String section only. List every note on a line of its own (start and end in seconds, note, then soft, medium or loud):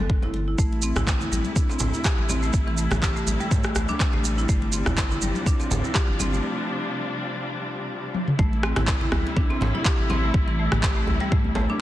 0.58 8.35 C3 medium
0.58 8.35 G3 medium
0.58 4.45 A3 medium
0.58 4.45 E4 medium
4.49 8.35 F3 medium
4.49 8.35 D4 medium
8.38 11.81 C3 medium
8.38 11.81 G3 medium
8.38 11.81 A3 medium
8.38 11.81 E4 medium